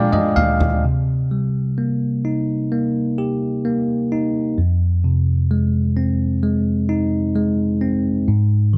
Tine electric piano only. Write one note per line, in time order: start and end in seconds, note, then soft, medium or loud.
0.00 0.79 A#2 medium
0.00 0.81 G#3 medium
0.00 0.32 D4 medium
0.00 0.80 F4 medium
0.00 0.11 D5 medium
0.00 0.36 F5 medium
0.00 0.85 G5 medium
0.00 0.85 G#5 medium
0.00 0.86 A#5 medium
0.12 0.35 D#5 medium
0.36 0.80 F5 medium
0.84 4.54 C3 soft
1.31 3.14 G3 soft
1.78 2.71 A#3 soft
2.25 4.07 D#4 soft
2.72 3.64 A#3 soft
3.18 4.54 G4 soft
3.65 4.55 A#3 soft
4.12 4.56 D#4 soft
4.58 8.24 F2 soft
5.04 6.85 C3 soft
5.51 6.42 G#3 soft
5.97 7.77 C4 soft
6.43 7.34 G#3 soft
6.89 8.24 D#4 soft
7.35 8.25 G#3 soft
7.81 8.26 C4 soft
8.28 8.78 G#2 medium
8.73 8.78 D#3 soft